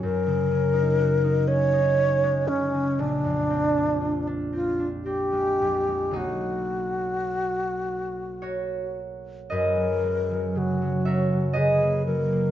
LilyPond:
<<
  \new Staff \with { instrumentName = "Alto flute" } { \time 3/4 \key b \major \tempo 4 = 58 ais'4. cis''4 cis'8 | d'4. eis'8 g'4 | fis'2~ fis'8 r8 | ais'4 fis'4 gis'8 ais'8 | }
  \new Staff \with { instrumentName = "Harp" } { \time 3/4 \key b \major r2. | r2. | r2 <fis' ais' cis''>4 | <gis' b' dis''>4. <ais' cis'' e''>8 <gis' b' dis''>4 | }
  \new Staff \with { instrumentName = "Harp" } { \time 3/4 \key b \major <fis, fis cis' dis' fis'>16 cis16 cis'16 dis'16 fis'16 dis'16 cis'16 dis'16 cis'16 gis16 cis16 gis16 | ais,,16 eis,16 bis16 d'16 eis'16 d'16 bis16 d'16 bis16 gis16 eis,16 gis16 | <b,, fis ais dis'>2. | fis,16 fis16 gis16 fis16 cis16 fis16 cis'16 fis16 cis16 ais16 fis16 ais16 | }
>>